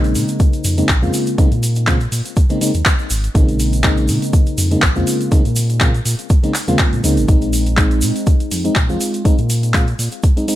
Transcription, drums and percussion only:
0.04 closed hi-hat, shaker
0.15 open hi-hat, shaker
0.28 closed hi-hat, shaker
0.40 kick, closed hi-hat, shaker
0.53 closed hi-hat, shaker
0.64 open hi-hat, shaker
0.78 closed hi-hat, shaker
0.89 kick, clap, closed hi-hat, shaker
1.03 shaker
1.13 open hi-hat, shaker
1.27 closed hi-hat, shaker
1.38 kick, closed hi-hat, shaker
1.52 closed hi-hat, shaker
1.63 open hi-hat, shaker
1.75 closed hi-hat, shaker
1.87 kick, clap, closed hi-hat, shaker
2.00 closed hi-hat, shaker
2.12 open hi-hat, shaker
2.25 closed hi-hat, shaker
2.36 kick, closed hi-hat, shaker
2.50 closed hi-hat, shaker
2.61 open hi-hat, shaker
2.74 closed hi-hat, shaker
2.85 kick, clap, closed hi-hat, shaker
2.99 shaker
3.10 open hi-hat, shaker
3.24 closed hi-hat, shaker
3.35 kick, closed hi-hat, shaker
3.48 closed hi-hat, shaker
3.60 open hi-hat, shaker
3.73 closed hi-hat, shaker
3.84 kick, clap, closed hi-hat, shaker
3.97 closed hi-hat, shaker
4.08 open hi-hat, shaker
4.22 closed hi-hat, shaker
4.33 kick, closed hi-hat, shaker
4.47 closed hi-hat, shaker
4.58 open hi-hat, shaker
4.71 closed hi-hat, shaker
4.82 kick, clap, closed hi-hat, shaker
4.96 shaker
5.07 open hi-hat, shaker
5.21 closed hi-hat, shaker
5.32 kick, closed hi-hat, shaker
5.45 closed hi-hat, shaker
5.56 open hi-hat, shaker
5.70 closed hi-hat, shaker
5.80 kick, clap, closed hi-hat, shaker
5.94 closed hi-hat, shaker
6.05 open hi-hat, shaker
6.19 closed hi-hat, shaker
6.30 kick, closed hi-hat, shaker
6.44 closed hi-hat, shaker
6.54 clap, open hi-hat, shaker
6.68 closed hi-hat, shaker
6.79 kick, clap, closed hi-hat, shaker
6.93 closed hi-hat, shaker
7.04 open hi-hat, shaker
7.17 closed hi-hat, shaker
7.28 kick, closed hi-hat, shaker
7.42 closed hi-hat, shaker
7.53 open hi-hat, shaker
7.66 closed hi-hat, shaker
7.77 kick, clap, closed hi-hat, shaker
7.91 closed hi-hat, shaker
8.01 open hi-hat, shaker
8.16 closed hi-hat, shaker
8.27 kick, closed hi-hat, shaker
8.40 closed hi-hat, shaker
8.51 open hi-hat, shaker
8.65 closed hi-hat, shaker
8.75 kick, clap, closed hi-hat, shaker
8.90 shaker
9.01 open hi-hat, shaker
9.14 closed hi-hat, shaker
9.25 kick, closed hi-hat, shaker
9.38 closed hi-hat, shaker
9.50 open hi-hat, shaker
9.63 closed hi-hat, shaker
9.74 kick, clap, closed hi-hat, shaker
9.87 closed hi-hat, shaker
9.99 open hi-hat, shaker
10.11 closed hi-hat, shaker
10.23 kick, closed hi-hat, shaker
10.37 closed hi-hat, shaker
10.48 open hi-hat, shaker

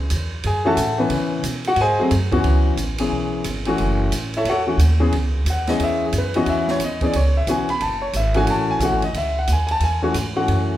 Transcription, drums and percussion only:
0.10 hi-hat pedal, ride
0.43 ride
0.77 hi-hat pedal, ride
1.10 ride
1.44 hi-hat pedal, ride
1.64 ride
1.76 ride
2.11 hi-hat pedal, ride
2.32 kick, ride
2.44 ride
2.77 hi-hat pedal, ride
2.98 ride
3.44 hi-hat pedal, ride
3.65 ride
3.78 ride
4.12 hi-hat pedal, ride
4.34 ride
4.45 ride
4.79 hi-hat pedal, ride
5.12 ride
5.46 hi-hat pedal, ride
5.67 snare, ride
5.80 ride
6.12 hi-hat pedal, ride
6.34 ride
6.46 ride
6.68 snare
6.80 hi-hat pedal, ride
7.01 kick, ride
7.13 ride
7.47 hi-hat pedal, ride
7.69 ride
7.80 ride
8.13 hi-hat pedal, ride
8.34 ride
8.47 ride
8.80 hi-hat pedal, ride
9.02 ride
9.14 ride
9.47 hi-hat pedal, ride
9.68 ride
9.80 ride
10.14 hi-hat pedal, ride
10.48 ride

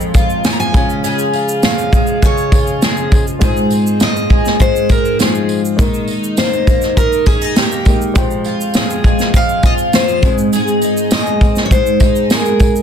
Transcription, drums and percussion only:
0.01 shaker
0.14 kick, tambourine, shaker
0.30 shaker
0.44 snare, tambourine, shaker
0.60 shaker
0.74 kick, tambourine
0.90 shaker
1.04 tambourine, shaker
1.19 shaker
1.33 tambourine
1.49 shaker
1.63 snare, tambourine, shaker
1.78 shaker
1.93 kick, shaker
2.07 shaker
2.22 kick, tambourine, shaker
2.38 shaker
2.52 kick, tambourine
2.67 shaker
2.82 snare, tambourine, shaker
2.97 shaker
3.12 kick, tambourine
3.27 shaker
3.42 kick, tambourine, shaker
3.57 shaker
3.71 tambourine, shaker
3.87 shaker
4.00 snare, tambourine, shaker
4.17 shaker
4.30 kick
4.46 snare, shaker
4.60 kick, tambourine, shaker
4.76 shaker
4.89 kick, tambourine
5.05 shaker
5.20 snare, tambourine, shaker
5.35 shaker
5.49 tambourine
5.65 shaker
5.79 kick, tambourine, shaker
5.94 shaker
6.08 tambourine
6.24 shaker
6.37 snare, tambourine, shaker
6.53 shaker
6.67 kick, tambourine, shaker
6.82 snare, shaker
6.97 kick, tambourine, shaker
7.13 shaker
7.26 kick, tambourine
7.42 shaker
7.56 snare, tambourine, shaker
7.72 shaker
7.85 kick, tambourine
8.02 shaker
8.16 kick, tambourine, shaker
8.31 shaker
8.44 tambourine
8.61 shaker
8.74 snare, tambourine, shaker
8.90 shaker
9.04 kick, tambourine
9.19 snare, shaker
9.34 kick, tambourine, shaker
9.49 shaker
9.63 kick, tambourine
9.78 shaker
9.93 snare, tambourine, shaker
10.08 shaker
10.22 kick, tambourine
10.38 shaker
10.53 tambourine, shaker
10.68 shaker
10.81 tambourine, shaker
10.97 shaker
11.11 snare, tambourine, shaker
11.27 shaker
11.41 kick, tambourine
11.56 snare, shaker
11.71 kick, shaker
11.87 shaker
12.00 kick, tambourine
12.16 shaker
12.30 snare, tambourine, shaker
12.45 shaker
12.60 kick, tambourine, shaker
12.76 shaker

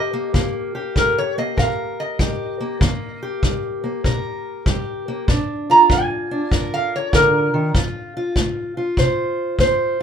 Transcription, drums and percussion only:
0.34 kick
0.96 kick
1.58 kick
2.19 kick
2.81 kick
3.43 kick
4.04 kick
4.66 kick
5.28 kick
5.90 kick
6.51 kick
7.13 kick
7.75 kick
8.36 kick
8.97 kick
9.59 kick

